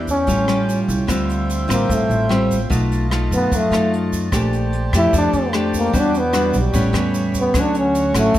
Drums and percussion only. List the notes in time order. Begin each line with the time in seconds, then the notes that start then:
0.07 kick, closed hi-hat, shaker
0.27 kick, closed hi-hat, shaker
0.48 cross-stick, closed hi-hat, shaker
0.69 closed hi-hat, shaker
0.88 kick, closed hi-hat, shaker
1.08 kick, cross-stick, closed hi-hat, shaker
1.29 closed hi-hat, shaker
1.49 closed hi-hat, shaker
1.69 kick, cross-stick, closed hi-hat, shaker
1.89 kick, closed hi-hat, shaker
2.10 closed hi-hat, shaker
2.31 cross-stick, closed hi-hat
2.50 kick, closed hi-hat, shaker
2.71 kick, closed hi-hat, shaker
2.91 closed hi-hat, shaker
3.11 cross-stick, closed hi-hat
3.31 kick, closed hi-hat, shaker
3.52 kick, closed hi-hat, shaker
3.72 cross-stick, closed hi-hat, shaker
3.94 closed hi-hat
4.12 kick, closed hi-hat, shaker
4.32 kick, cross-stick, closed hi-hat, shaker
4.53 closed hi-hat, shaker
4.73 closed hi-hat
4.93 kick, cross-stick, closed hi-hat, shaker
5.13 kick, closed hi-hat, shaker
5.33 closed hi-hat, shaker
5.53 cross-stick, closed hi-hat
5.74 kick, closed hi-hat, shaker
5.94 kick, closed hi-hat, shaker
6.14 closed hi-hat, shaker
6.34 cross-stick, closed hi-hat, shaker
6.54 kick, closed hi-hat, shaker
6.74 kick, closed hi-hat, shaker
6.94 cross-stick, closed hi-hat, shaker
7.14 closed hi-hat, shaker
7.34 kick, closed hi-hat, shaker
7.54 kick, cross-stick, closed hi-hat, shaker
7.75 closed hi-hat, shaker
7.95 closed hi-hat, shaker
8.14 kick, cross-stick, closed hi-hat, shaker
8.34 kick, closed hi-hat, shaker